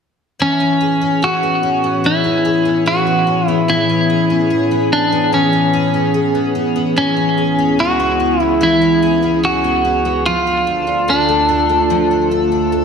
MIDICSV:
0, 0, Header, 1, 4, 480
1, 0, Start_track
1, 0, Key_signature, 3, "major"
1, 0, Tempo, 821918
1, 232, Time_signature, 4, 2, 24, 8
1, 7502, End_track
2, 0, Start_track
2, 0, Title_t, "Clean electric guitar"
2, 0, Program_c, 0, 27
2, 244, Note_on_c, 0, 61, 82
2, 724, Note_on_c, 0, 66, 94
2, 732, Note_off_c, 0, 61, 0
2, 1204, Note_on_c, 0, 64, 80
2, 1212, Note_off_c, 0, 66, 0
2, 1655, Note_off_c, 0, 64, 0
2, 1679, Note_on_c, 0, 66, 83
2, 2035, Note_off_c, 0, 66, 0
2, 2035, Note_on_c, 0, 64, 83
2, 2159, Note_off_c, 0, 64, 0
2, 2159, Note_on_c, 0, 64, 89
2, 2876, Note_off_c, 0, 64, 0
2, 2878, Note_on_c, 0, 62, 72
2, 3116, Note_off_c, 0, 62, 0
2, 3118, Note_on_c, 0, 61, 62
2, 3812, Note_off_c, 0, 61, 0
2, 4074, Note_on_c, 0, 61, 90
2, 4556, Note_on_c, 0, 66, 91
2, 4568, Note_off_c, 0, 61, 0
2, 4912, Note_off_c, 0, 66, 0
2, 4912, Note_on_c, 0, 64, 91
2, 5042, Note_off_c, 0, 64, 0
2, 5042, Note_on_c, 0, 64, 74
2, 5494, Note_off_c, 0, 64, 0
2, 5518, Note_on_c, 0, 66, 82
2, 5990, Note_off_c, 0, 66, 0
2, 5993, Note_on_c, 0, 65, 90
2, 6481, Note_on_c, 0, 62, 69
2, 6487, Note_off_c, 0, 65, 0
2, 7173, Note_off_c, 0, 62, 0
2, 7502, End_track
3, 0, Start_track
3, 0, Title_t, "Twelve-string acoustic guitar"
3, 0, Program_c, 1, 25
3, 231, Note_on_c, 1, 52, 69
3, 351, Note_on_c, 1, 61, 51
3, 471, Note_on_c, 1, 68, 53
3, 590, Note_off_c, 1, 61, 0
3, 593, Note_on_c, 1, 61, 54
3, 711, Note_off_c, 1, 68, 0
3, 713, Note_on_c, 1, 68, 57
3, 835, Note_on_c, 1, 59, 52
3, 950, Note_off_c, 1, 61, 0
3, 953, Note_on_c, 1, 61, 52
3, 1070, Note_off_c, 1, 59, 0
3, 1073, Note_on_c, 1, 59, 51
3, 1189, Note_off_c, 1, 52, 0
3, 1191, Note_on_c, 1, 52, 64
3, 1307, Note_off_c, 1, 61, 0
3, 1309, Note_on_c, 1, 61, 51
3, 1428, Note_off_c, 1, 68, 0
3, 1430, Note_on_c, 1, 68, 60
3, 1547, Note_off_c, 1, 61, 0
3, 1549, Note_on_c, 1, 61, 53
3, 1668, Note_off_c, 1, 68, 0
3, 1670, Note_on_c, 1, 68, 62
3, 1789, Note_off_c, 1, 59, 0
3, 1791, Note_on_c, 1, 59, 50
3, 1906, Note_off_c, 1, 61, 0
3, 1908, Note_on_c, 1, 61, 50
3, 2030, Note_off_c, 1, 59, 0
3, 2033, Note_on_c, 1, 59, 53
3, 2148, Note_off_c, 1, 52, 0
3, 2151, Note_on_c, 1, 52, 72
3, 2271, Note_off_c, 1, 61, 0
3, 2274, Note_on_c, 1, 61, 49
3, 2390, Note_off_c, 1, 68, 0
3, 2392, Note_on_c, 1, 68, 54
3, 2509, Note_off_c, 1, 61, 0
3, 2511, Note_on_c, 1, 61, 53
3, 2627, Note_off_c, 1, 68, 0
3, 2630, Note_on_c, 1, 68, 57
3, 2749, Note_off_c, 1, 59, 0
3, 2752, Note_on_c, 1, 59, 49
3, 2989, Note_off_c, 1, 59, 0
3, 2992, Note_on_c, 1, 59, 57
3, 3009, Note_off_c, 1, 61, 0
3, 3107, Note_off_c, 1, 52, 0
3, 3110, Note_on_c, 1, 52, 65
3, 3228, Note_on_c, 1, 61, 55
3, 3346, Note_off_c, 1, 68, 0
3, 3348, Note_on_c, 1, 68, 56
3, 3465, Note_off_c, 1, 61, 0
3, 3468, Note_on_c, 1, 61, 52
3, 3584, Note_off_c, 1, 68, 0
3, 3586, Note_on_c, 1, 68, 56
3, 3704, Note_off_c, 1, 59, 0
3, 3707, Note_on_c, 1, 59, 49
3, 3823, Note_off_c, 1, 61, 0
3, 3825, Note_on_c, 1, 61, 54
3, 3943, Note_off_c, 1, 59, 0
3, 3946, Note_on_c, 1, 59, 54
3, 4065, Note_off_c, 1, 52, 0
3, 4067, Note_on_c, 1, 52, 67
3, 4182, Note_off_c, 1, 61, 0
3, 4185, Note_on_c, 1, 61, 50
3, 4202, Note_off_c, 1, 59, 0
3, 4305, Note_off_c, 1, 68, 0
3, 4308, Note_on_c, 1, 68, 54
3, 4422, Note_off_c, 1, 61, 0
3, 4429, Note_on_c, 1, 61, 51
3, 4542, Note_off_c, 1, 68, 0
3, 4549, Note_on_c, 1, 68, 57
3, 4669, Note_on_c, 1, 59, 56
3, 4780, Note_off_c, 1, 61, 0
3, 4787, Note_on_c, 1, 61, 54
3, 4899, Note_off_c, 1, 59, 0
3, 4906, Note_on_c, 1, 59, 51
3, 5019, Note_off_c, 1, 52, 0
3, 5026, Note_on_c, 1, 52, 70
3, 5141, Note_off_c, 1, 61, 0
3, 5148, Note_on_c, 1, 61, 53
3, 5263, Note_off_c, 1, 68, 0
3, 5270, Note_on_c, 1, 68, 56
3, 5381, Note_off_c, 1, 61, 0
3, 5388, Note_on_c, 1, 61, 54
3, 5502, Note_off_c, 1, 68, 0
3, 5509, Note_on_c, 1, 68, 62
3, 5623, Note_off_c, 1, 59, 0
3, 5630, Note_on_c, 1, 59, 52
3, 5743, Note_off_c, 1, 61, 0
3, 5750, Note_on_c, 1, 61, 52
3, 5862, Note_off_c, 1, 59, 0
3, 5869, Note_on_c, 1, 59, 56
3, 5989, Note_off_c, 1, 52, 0
3, 5991, Note_on_c, 1, 53, 66
3, 6039, Note_off_c, 1, 59, 0
3, 6039, Note_off_c, 1, 61, 0
3, 6039, Note_off_c, 1, 68, 0
3, 6113, Note_on_c, 1, 62, 52
3, 6231, Note_on_c, 1, 69, 54
3, 6341, Note_off_c, 1, 62, 0
3, 6348, Note_on_c, 1, 62, 53
3, 6467, Note_off_c, 1, 69, 0
3, 6470, Note_on_c, 1, 69, 62
3, 6590, Note_on_c, 1, 57, 50
3, 6701, Note_off_c, 1, 62, 0
3, 6708, Note_on_c, 1, 62, 55
3, 6826, Note_off_c, 1, 57, 0
3, 6828, Note_on_c, 1, 57, 55
3, 6943, Note_off_c, 1, 53, 0
3, 6950, Note_on_c, 1, 53, 68
3, 7065, Note_off_c, 1, 62, 0
3, 7072, Note_on_c, 1, 62, 49
3, 7188, Note_off_c, 1, 69, 0
3, 7191, Note_on_c, 1, 69, 55
3, 7303, Note_off_c, 1, 62, 0
3, 7310, Note_on_c, 1, 62, 47
3, 7427, Note_off_c, 1, 69, 0
3, 7430, Note_on_c, 1, 69, 58
3, 7502, Note_off_c, 1, 53, 0
3, 7502, Note_off_c, 1, 57, 0
3, 7502, Note_off_c, 1, 62, 0
3, 7502, Note_off_c, 1, 69, 0
3, 7502, End_track
4, 0, Start_track
4, 0, Title_t, "Ambient pad"
4, 0, Program_c, 2, 92
4, 230, Note_on_c, 2, 45, 78
4, 232, Note_on_c, 2, 73, 67
4, 233, Note_on_c, 2, 68, 77
4, 235, Note_on_c, 2, 52, 65
4, 236, Note_on_c, 2, 59, 70
4, 4047, Note_off_c, 2, 45, 0
4, 4049, Note_off_c, 2, 73, 0
4, 4050, Note_off_c, 2, 52, 0
4, 4067, Note_on_c, 2, 64, 69
4, 4068, Note_on_c, 2, 37, 72
4, 4070, Note_on_c, 2, 49, 71
4, 5969, Note_off_c, 2, 68, 0
4, 5970, Note_off_c, 2, 64, 0
4, 5971, Note_off_c, 2, 37, 0
4, 5971, Note_off_c, 2, 59, 0
4, 5972, Note_off_c, 2, 49, 0
4, 5983, Note_on_c, 2, 50, 69
4, 5985, Note_on_c, 2, 38, 76
4, 5985, Note_on_c, 2, 57, 66
4, 5986, Note_on_c, 2, 69, 87
4, 5987, Note_on_c, 2, 65, 68
4, 7502, Note_off_c, 2, 38, 0
4, 7502, Note_off_c, 2, 50, 0
4, 7502, Note_off_c, 2, 57, 0
4, 7502, Note_off_c, 2, 65, 0
4, 7502, Note_off_c, 2, 69, 0
4, 7502, End_track
0, 0, End_of_file